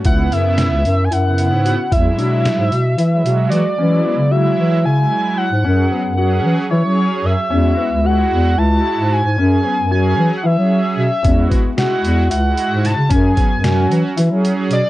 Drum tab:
HH |xxxxxxx|xxxxxxx|-------|-------|
SD |--o----|--o----|-------|-------|
BD |o------|o------|-------|-------|

HH |-------|-------|xxxxxxx|xxxxxxx|
SD |-------|-------|--o---o|--o----|
BD |-------|-------|oo-----|oo-----|